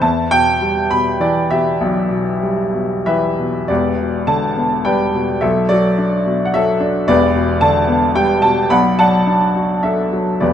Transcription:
0.01 E2 E5 A5
0.31 B2 G5
0.61 G3
0.91 B2 B5
1.20 E3 D5
1.50 B2 G4 E5
1.81 B1
2.11 B2
2.42 G3
2.73 B2
3.06 E3 G4 B4 E5
3.39 B2
3.68 E1 E2 G4 B4 D5
3.98 B2
4.27 D3 D5 A5
4.56 B3
4.85 G3 B4 D5 G5
5.14 B2
5.41 B1 B2 A4 E5
5.69 F#3 F#4 A4 D5
5.98 D4
6.26 B2
6.45 F#5
6.53 F#3 A4 E5
6.80 D4
7.08 E1 E2 G4 B4 D5
7.35 B2
7.61 D3 D5 A5
7.88 B3
8.15 G3 G5
8.42 B2 A5
8.70 B1 B2 D5 F#5 B5
8.99 F#3 D5 F#5 A5
9.27 D4
9.55 F#4
9.83 D4 A4 E5
10.13 F#3
10.40 E1 E2 G4 B4 D5

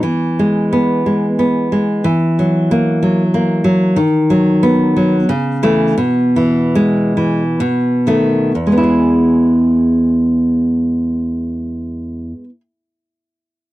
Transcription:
0.03 E3
0.39 G#3
0.73 B3
1.06 G#3
1.39 B3
1.72 G#3
2.04 E3
2.39 F#3
2.71 A#3
3.03 F#3
3.34 A#3
3.64 F#3
3.96 D#3
4.30 F#3
4.63 B3
4.96 F#3
5.29 C#3
5.63 E3 A3
5.98 B2
6.36 E3
6.75 G#3
7.17 E3
7.60 B2
8.07 D#3 A3
8.55 E2
8.67 G#3
8.72 B3
8.78 E4
8.83 G#4

